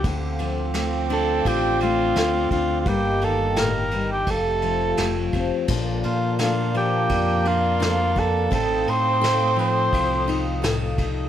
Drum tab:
CC |--------|--------|x-------|--------|
RD |xxxxxxxx|xxxxxxxx|-xxxxxxx|xxxxxxxx|
SD |--o---o-|--o---o-|--o---o-|--o---o-|
BD |o---o--o|o---o--o|o---o--o|o---o--o|